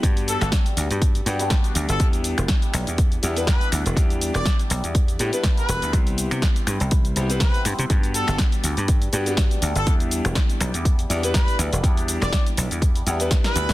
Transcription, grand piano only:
X:1
M:4/4
L:1/16
Q:"Swing 16ths" 1/4=122
K:Em
V:1 name="Grand piano"
[G,B,DFG]8- [G,B,DFG]2 [G,B,DFG] [G,B,DFG]4- [G,B,DFG] | [G,B,DEG]8- [G,B,DEG]2 [G,B,DEG] [G,B,DEB]4- [G,B,DEB] | [G,B,DEG]8- [G,B,DEG]2 [G,B,DEG] [G,B,DEB]4- [G,B,DEB] | [G,B,CEG]8- [G,B,CEG]2 [G,B,CEG] [G,B,CEB]4- [G,B,CEB] |
[G,B,DFG]8- [G,B,DFG]2 [G,B,DFG] [G,B,DFG]4- [G,B,DFG] | [G,B,DEG]8- [G,B,DEG]2 [G,B,DEG] [G,B,DEB]4- [G,B,DEB] | [G,B,DEG]8- [G,B,DEG]2 [G,B,DEG] [G,B,DEB]4- [G,B,DEB] |]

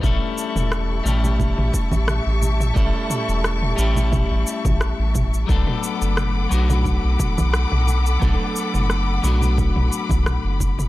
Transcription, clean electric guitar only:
X:1
M:4/4
L:1/8
Q:"Swing 16ths" 1/4=88
K:Amix
V:1 name="Clean electric guitar"
[G,A,CEA]3 [G,A,CEG]4- [G,A,CEG] | [G,A,CEA]3 [G,A,CEG]4- [G,A,CEG] | [F,A,B,DA]3 [F,A,B,DF]4- [F,A,B,DF] | [F,A,B,DA]3 [F,A,B,DF]4- [F,A,B,DF] |]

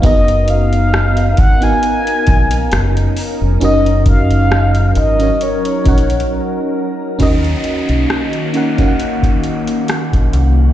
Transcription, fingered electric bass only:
X:1
M:4/4
L:1/16
Q:"Swing 16ths" 1/4=67
K:D#m
V:1 name="Fingered electric bass" clef=bass
F,,,6 G,,,2 z2 A,,,2 F,,,2 z E,,, | F,,,6 G,,,2 z2 A,,,2 z4 | D,,2 z B,,, z8 z A,,, ^B,,,2 |]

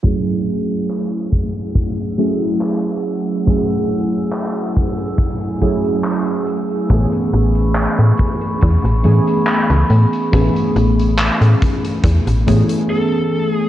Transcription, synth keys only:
X:1
M:4/4
L:1/8
Q:1/4=70
K:F#m
V:1 name="Synth keys"
[F,A,CEG]4- [F,A,CEG] [F,A,CEG] z2 | [F,A,CEG]4- [F,A,CEG] [F,A,CEG] z2 | [E,A,B,CG]4- [E,A,B,CG] [E,A,B,CG] z2 | [E,A,B,CG]4- [E,A,B,CG] [E,A,B,CG] z2 |]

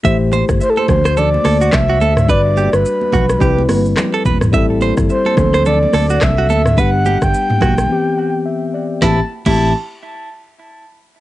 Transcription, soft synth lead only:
X:1
M:4/4
L:1/16
Q:"Swing 16ths" 1/4=107
K:Ador
V:1 name="Soft synth lead"
z4 c/2 A/2 c3 d4 e4 | d3 B8 z4 z | z4 c4 d4 e4 | f3 g8 z4 z |
a z2 a2 z8 z3 |]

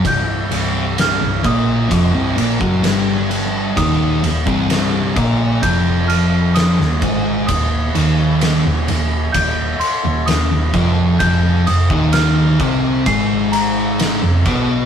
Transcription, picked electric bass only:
X:1
M:4/4
L:1/16
Q:1/4=64
K:Eb
V:1 name="Picked electric bass" clef=bass
C,,,2 C,,,3 C,,, B,,,2 F,,, C,,, B,,, ^F,,, G,,,4 | E,,,2 E,,, C,,,3 B,,,2 F,,,4- F,,, E,,, A,,,2 | E,,,2 E,,,3 E,,, E,,,2 E,,,2 z E,,, E,,, E,,, F,,,2 | F,,,2 F,,, E,,,3 C,,2 A,,,4- A,,, F,,, =B,,,2 |]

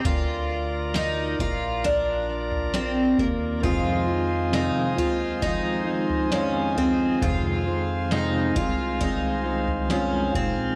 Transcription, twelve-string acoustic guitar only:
X:1
M:4/4
L:1/8
Q:1/4=67
K:Fm
V:1 name="Twelve-string acoustic guitar"
F2 E F =D2 C B, | F2 E F E2 D C | F2 E F E2 D C |]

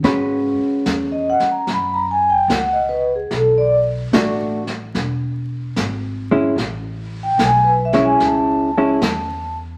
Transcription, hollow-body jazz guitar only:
X:1
M:4/4
L:1/8
Q:"Swing" 1/4=74
K:G#m
V:1 name="Hollow-body jazz guitar"
[G,CFB]4- [G,CFB] z3 | z2 [=A,=DF] z4 [G,CE] | z3 [G,CE]2 [G,CE] z2 |]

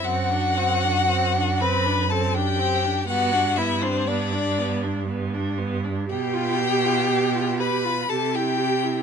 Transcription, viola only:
X:1
M:3/4
L:1/16
Q:1/4=60
K:G
V:1 name="Viola"
C D C D C D C D C D C D | B, D B, D B, D B, D B, D B, D | [K:Gmix] G F G F G F G F G E G E |]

